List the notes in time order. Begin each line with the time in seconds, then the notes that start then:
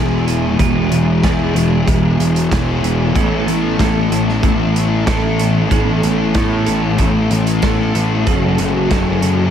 Already playing: E1 E2 B2 E3 G#3 B3 E4 G#4
0.27 B3 E4 G#4, closed hi-hat
0.58 E1 E2 B2 E3 G#3 B3 E4 G#4, kick, closed hi-hat
0.91 E1, closed hi-hat
1.22 E2 B2 E3 G#3 B3 E4 G#4, kick, snare, closed hi-hat
1.54 E1 B3 E4 G#4, closed hi-hat
1.86 E1 E2 B2 E3 G#3 B3 E4 G#4, kick, closed hi-hat
2.18 E1, closed hi-hat
2.36 closed hi-hat
2.50 E1 E2 B2 E3 G#3 B3 E4 G#4, kick, snare, closed hi-hat
2.83 E1 B3 E4 G#4, closed hi-hat
3.13 A1 A2 E3 A3 B3 E4 A4, kick, closed hi-hat
3.47 A1, closed hi-hat
3.78 A1 A2 E3 A3 B3 E4 A4, kick, snare, closed hi-hat
4.10 A1 B3 E4 A4, closed hi-hat
4.29 snare
4.41 A1 A2 E3 A3 B3 E4 A4, kick, closed hi-hat
4.76 closed hi-hat
5.06 A1 A2 E3 A3 B3 E4 A4, kick, snare, closed hi-hat
5.39 B3 E4 A4, closed hi-hat
5.69 A1 A2 E3 A3 B3 E4 A4, kick, closed hi-hat
6.03 A1, closed hi-hat
6.34 A2 E3 A3 B3 E4 A4, kick, snare, closed hi-hat
6.66 A1 B3 E4 A4, closed hi-hat
6.97 A1 A2 E3 A3 B3 E4 A4, kick, closed hi-hat
7.02 A3
7.31 A1, closed hi-hat
7.47 closed hi-hat
7.62 A1 A2 E3 A3 B3 E4 A4, kick, snare, closed hi-hat
7.94 A1 B3 E4 A4, closed hi-hat
8.26 F#1 F#2 C#3 F#3 C#4 F#4 A4, kick, closed hi-hat
8.58 F#1, closed hi-hat
8.90 F#1 F#2 C#3 F#3 C#4 F#4 A4, kick, snare, closed hi-hat
9.21 F#1 C#4 F#4 A4, closed hi-hat